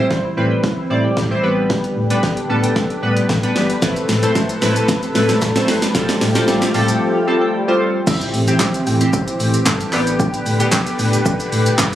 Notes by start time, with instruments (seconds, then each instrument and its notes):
Already playing: supersaw synth E3 C4 G4, synth keys G3
0.00 synth keys C4 E4 C5
0.11 sub bass A1, synth pluck G3, kick, snare
0.25 synth pluck E4
0.37 sub bass A2, synth keys G3 C4 E4 B4, synth pluck C5
0.51 synth pluck G5
0.64 sub bass G1, kick, snare
0.78 synth pluck E4
0.90 sub bass A2, synth keys G3 C4 E4 D5, synth pluck C5
1.04 synth pluck G5
1.17 sub bass A2, synth pluck G3, kick, snare
1.31 synth keys G3 C4 E4 C5, synth pluck E4
1.43 sub bass A1, supersaw synth D3 B4, synth keys G3 B3 D4 B4, synth pluck B4
1.70 synth pluck G3, kick, snare
1.84 closed hi-hat
1.96 sub bass A2
2.10 synth keys G3 B3 D4 B4, synth pluck G5, closed hi-hat
2.23 sub bass A1, synth pluck G3, kick, snare
2.37 synth pluck D4, closed hi-hat
2.49 sub bass A2, synth keys G3 B3 D4 A4, synth pluck B4
2.64 synth pluck G5, closed hi-hat
2.76 sub bass D1, kick, snare
2.90 synth pluck D4, closed hi-hat
3.02 sub bass A2, synth keys G3 B3 D4 B4, synth pluck B4
3.17 synth pluck G5, closed hi-hat
3.29 sub bass A2, synth pluck G3, kick, snare
3.43 synth keys G3 B3 D4 B4, synth pluck D4, closed hi-hat
3.56 sub bass G1, synth pluck B4, snare
3.70 closed hi-hat
3.82 sub bass A1, supersaw synth C3 A4, synth keys A3 C4 E4 B4, synth pluck A3, kick, snare, shaker
3.96 closed hi-hat, shaker
4.09 sub bass A2, snare, open hi-hat, shaker
4.23 synth keys A3 C4 E4 C5, synth pluck A5, closed hi-hat, shaker
4.35 sub bass A1, synth pluck A3, kick, snare, shaker
4.49 synth pluck C4, closed hi-hat, shaker
4.62 sub bass A2, synth keys A3 C4 E4 B4, synth pluck B4, snare, open hi-hat, shaker
4.76 synth pluck A5, closed hi-hat, shaker
4.88 sub bass E1, kick, snare, shaker
5.03 synth pluck C4, closed hi-hat, shaker
5.15 sub bass A2, synth keys A3 C4 E4 B4, synth pluck B4, snare, open hi-hat, shaker
5.29 synth pluck A5, snare, closed hi-hat, shaker
5.41 sub bass A2, synth pluck A3, kick, snare, shaker
5.55 synth keys A3 C4 E4 C5, synth pluck C4, snare, closed hi-hat, shaker
5.68 sub bass G1, synth pluck B4, snare, open hi-hat, shaker
5.82 snare, closed hi-hat, shaker
5.95 sub bass A1, supersaw synth F3 A3 G4, synth keys G3 C4 F4 A4, synth pluck G3, kick, snare, shaker
6.09 snare, closed hi-hat, shaker
6.21 sub bass A2, snare, open hi-hat, shaker
6.35 synth keys G3 C4 F4 A4, synth pluck G5, snare, closed hi-hat, shaker
6.48 sub bass A1, synth pluck G3, snare, shaker
6.62 synth pluck F4, snare, closed hi-hat, shaker
6.74 sub bass A2, synth keys G3 C4 F4 A4, synth pluck A4, open hi-hat, shaker
6.88 synth pluck G5, closed hi-hat, shaker
7.15 synth pluck F4
7.27 synth keys G3 C4 F4 A4, synth pluck A4
7.42 synth pluck G5
7.54 synth pluck G3
7.68 synth keys G3 C4 F4 C5, synth pluck F4
7.81 synth pluck A4
8.07 sub bass A1, supersaw synth E3 C4 G4, synth keys C4 E4 G4, synth pluck E4 E5, kick, crash, impact, shaker
8.21 sub bass A1, closed hi-hat, shaker
8.34 sub bass A2, open hi-hat, shaker
8.47 synth keys C4 E4 G4, synth pluck G4 G5, closed hi-hat, shaker
8.60 sub bass G1, kick, snare, clap, shaker
8.74 closed hi-hat, shaker
8.87 sub bass A2, synth pluck G4 G5, open hi-hat, shaker
9.01 synth keys C4 E4 G4, closed hi-hat, shaker
9.13 sub bass A1, kick, shaker
9.28 closed hi-hat, shaker
9.40 sub bass A2, open hi-hat, shaker
9.54 closed hi-hat, shaker
9.66 sub bass G2, synth pluck A4 A5, kick, snare, clap, shaker
9.81 closed hi-hat, shaker
9.93 sub bass A1, supersaw synth D3 B4, synth keys B3 D4 G4, synth pluck B4 B5, clap, open hi-hat, shaker
10.07 closed hi-hat, shaker
10.20 synth pluck G4 G5, kick, shaker
10.34 sub bass A1, closed hi-hat, shaker
10.46 sub bass A2, open hi-hat, shaker
10.60 synth keys B3 D4 G4, synth pluck G4 G5, closed hi-hat, shaker
10.72 sub bass D1, kick, snare, clap, shaker
10.87 closed hi-hat, shaker
10.99 sub bass A2, synth pluck G4 G5, open hi-hat, shaker
11.13 closed hi-hat, shaker
11.26 sub bass A1, kick, shaker
11.40 closed hi-hat, shaker
11.52 sub bass A2, open hi-hat, shaker
11.66 closed hi-hat, shaker
11.78 sub bass G2, kick, snare, clap, shaker